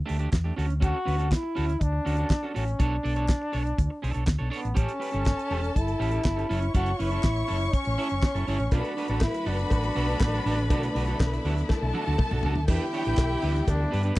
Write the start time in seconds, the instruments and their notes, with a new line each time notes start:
0.06 clean electric guitar A3 D4 G4, open hi-hat
0.10 fingered electric bass D2
0.19 clean electric guitar A3 D4 G4, closed hi-hat
0.33 fingered electric bass E2, kick, snare, clap, closed hi-hat
0.44 clean electric guitar A3 D4 G4
0.56 fingered electric bass D2, clean electric guitar C#4 F#4 A4, snare, open hi-hat
0.69 muted clean electric guitar stroke, closed hi-hat
0.80 clean electric guitar C#4 F#4 A4, trombone F#4, kick, closed hi-hat
1.05 fingered electric bass D2, clean electric guitar C#4 F#4 B4, open hi-hat
1.18 clean electric guitar C#4 F#4 A4, closed hi-hat
1.30 trombone E4, muted clean electric guitar stroke, kick, snare, clap, closed hi-hat
1.43 muted clean electric guitar stroke
1.55 fingered electric bass D2, clean electric guitar C#4 F#4 A4, open hi-hat
1.68 muted clean electric guitar stroke, closed hi-hat
1.80 fingered electric bass D2, trombone D4, muted clean electric guitar stroke, kick, closed hi-hat
1.93 muted clean electric guitar stroke
2.05 fingered electric bass D2, clean electric guitar C#4 F#4 A4, open hi-hat
2.17 clean electric guitar C#4 F#4 A4, closed hi-hat
2.30 muted clean electric guitar stroke, kick, snare, clap, closed hi-hat
2.43 clean electric guitar C#4 F#4 A4
2.54 fingered electric bass A1, clean electric guitar C#4 F#4 A4, trombone C#4, snare, open hi-hat
2.67 muted clean electric guitar stroke, closed hi-hat
2.79 fingered electric bass B1, clean electric guitar D4 A4 C#5, trombone D4, kick, closed hi-hat
3.03 fingered electric bass B1, clean electric guitar D4 A4 D5, open hi-hat
3.16 clean electric guitar D4 A4 C#5, closed hi-hat
3.28 kick, snare, clap, closed hi-hat
3.42 muted clean electric guitar stroke
3.52 fingered electric bass B1, clean electric guitar D4 A4 C#5, open hi-hat
3.65 muted clean electric guitar stroke, closed hi-hat
3.78 fingered electric bass D2, muted clean electric guitar stroke, kick, closed hi-hat
3.90 muted clean electric guitar stroke
4.02 fingered electric bass B1, clean electric guitar D4 A4 C#5, open hi-hat
4.13 fingered electric bass B1, clean electric guitar D4 A4 C#5, closed hi-hat
4.26 fingered electric bass D2, muted clean electric guitar stroke, kick, snare, clap, closed hi-hat
4.39 fingered electric bass B1, clean electric guitar D4 A4 C#5
4.50 clean electric guitar D4 A4 C#5, open hi-hat
4.55 trombone B3
4.63 fingered electric bass A1, muted clean electric guitar stroke, closed hi-hat
4.74 fingered electric bass A1, clean electric guitar C#4 G4 A4, violin section A4, kick, closed hi-hat
4.78 trombone C#4, violin section A5
4.89 closed hi-hat
5.00 clean electric guitar C#4 G4 B4, open hi-hat
5.12 fingered electric bass G1, clean electric guitar C#4 G4 A4, closed hi-hat
5.26 muted clean electric guitar stroke, kick, snare, clap
5.38 muted clean electric guitar stroke, closed hi-hat
5.50 fingered electric bass E1, clean electric guitar C#4 G4 A4, open hi-hat
5.62 muted clean electric guitar stroke, closed hi-hat
5.75 fingered electric bass G1, trombone E4, muted clean electric guitar stroke, kick, closed hi-hat
5.87 muted clean electric guitar stroke, closed hi-hat
5.99 fingered electric bass A1, clean electric guitar C#4 G4 A4, open hi-hat
6.11 clean electric guitar C#4 G4 A4, closed hi-hat
6.24 fingered electric bass G1, muted clean electric guitar stroke, kick, snare, clap
6.37 clean electric guitar C#4 G4 A4, closed hi-hat
6.49 fingered electric bass F#1, clean electric guitar C#4 E4 A4, violin section C#5 C#6, snare, open hi-hat
6.62 muted clean electric guitar stroke, closed hi-hat
6.74 fingered electric bass F#1, clean electric guitar C#4 E4 A4, trombone F#4, kick, closed hi-hat
6.86 closed hi-hat
6.99 fingered electric bass F#1, clean electric guitar C#4 E4 B4, trombone E4, open hi-hat
7.11 clean electric guitar C#4 E4 A4, closed hi-hat
7.23 fingered electric bass A1, kick, snare, clap
7.36 muted clean electric guitar stroke, closed hi-hat
7.48 fingered electric bass F#1, clean electric guitar C#4 E4 A4, open hi-hat
7.60 muted clean electric guitar stroke, closed hi-hat
7.73 trombone C#4, kick, closed hi-hat
7.84 fingered electric bass A1, muted clean electric guitar stroke, closed hi-hat
7.98 clean electric guitar C#4 E4 A4, open hi-hat
8.09 fingered electric bass F#1, muted clean electric guitar stroke, closed hi-hat
8.22 muted clean electric guitar stroke, kick, snare, clap
8.35 fingered electric bass F#1, clean electric guitar C#4 E4 A4, closed hi-hat
8.47 fingered electric bass G1, clean electric guitar C#4 E4 A4, trombone C#4, open hi-hat
8.60 fingered electric bass A1, muted clean electric guitar stroke, closed hi-hat
8.71 fingered electric bass B1, string section D3 F#3 A3 B3 F#4, clean electric guitar D4 F#4 A4, trombone D4, violin section B4 B5, kick, closed hi-hat, cowbell
8.84 closed hi-hat
8.97 clean electric guitar D4 F#4 B4, open hi-hat
9.08 fingered electric bass A1, trombone D4, clean electric guitar D4 F#4 A4, closed hi-hat
9.21 trombone E4, kick, snare, clap, cowbell
9.34 muted clean electric guitar stroke, closed hi-hat
9.46 fingered electric bass F#1, clean electric guitar D4 F#4 A4, trombone D4, open hi-hat
9.59 muted clean electric guitar stroke, closed hi-hat
9.70 fingered electric bass A1, muted clean electric guitar stroke, kick, closed hi-hat, cowbell
9.83 muted clean electric guitar stroke, closed hi-hat
9.95 fingered electric bass B1, clean electric guitar D4 F#4 A4, open hi-hat
10.07 clean electric guitar D4 F#4 A4, closed hi-hat
10.20 fingered electric bass A1, muted clean electric guitar stroke, kick, snare, clap, cowbell
10.34 clean electric guitar D4 F#4 A4, closed hi-hat
10.46 fingered electric bass A1, clean electric guitar D4 F#4 A4, open hi-hat
10.58 muted clean electric guitar stroke, closed hi-hat
10.70 fingered electric bass B1, clean electric guitar D4 F#4 A4, string section E4, kick, closed hi-hat, cowbell
10.83 closed hi-hat
10.95 fingered electric bass B1, clean electric guitar D4 F#4 B4, open hi-hat
11.07 clean electric guitar D4 F#4 A4, closed hi-hat
11.20 fingered electric bass B1, kick, snare, clap, cowbell
11.32 muted clean electric guitar stroke, closed hi-hat
11.45 fingered electric bass D2, clean electric guitar D4 F#4 A4, open hi-hat
11.57 muted clean electric guitar stroke, closed hi-hat
11.69 violin section A4 A5, muted clean electric guitar stroke, kick, snare, cowbell
11.81 fingered electric bass B1, muted clean electric guitar stroke
11.94 clean electric guitar D4 F#4 A4, high tom
12.06 fingered electric bass D2, clean electric guitar D4 F#4 A4
12.18 muted clean electric guitar stroke, kick, mid tom, cowbell
12.31 fingered electric bass B1, clean electric guitar D4 F#4 A4, mid tom
12.43 fingered electric bass C#2, clean electric guitar D4 F#4 A4, floor tom
12.55 fingered electric bass D2, muted clean electric guitar stroke, floor tom
12.68 fingered electric bass E2, string section D3 E3 G3 B3 E4, clean electric guitar D4 G4 B4, trombone E4, violin section G4 G5, kick, crash, cowbell
12.93 clean electric guitar D4 G4 C#5, open hi-hat
13.05 fingered electric bass A1, clean electric guitar D4 G4 B4, closed hi-hat
13.17 fingered electric bass B1, kick, snare, clap, closed hi-hat, cowbell
13.31 muted clean electric guitar stroke
13.42 fingered electric bass D2, clean electric guitar D4 G4 B4, open hi-hat
13.55 muted clean electric guitar stroke, closed hi-hat
13.68 fingered electric bass D2, trombone D4, muted clean electric guitar stroke, kick, closed hi-hat, cowbell
13.80 muted clean electric guitar stroke
13.91 fingered electric bass G2, clean electric guitar D4 G4 B4, open hi-hat
14.03 clean electric guitar D4 G4 B4, closed hi-hat